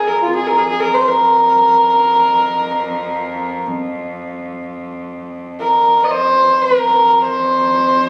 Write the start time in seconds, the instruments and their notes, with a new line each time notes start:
Already playing: cello F2
0.07 horsehead fiddle A#4
0.22 horsehead fiddle F4
0.34 cello F2, horsehead fiddle G#4
0.47 horsehead fiddle A#4
0.58 horsehead fiddle G#4
0.69 horsehead fiddle G#4
0.80 horsehead fiddle A#4
0.94 horsehead fiddle C5
1.08 horsehead fiddle A#4
5.61 horsehead fiddle A#4
6.04 horsehead fiddle D#5
6.11 horsehead fiddle C5
6.62 horsehead fiddle A#4
6.80 cello F2
7.21 horsehead fiddle C5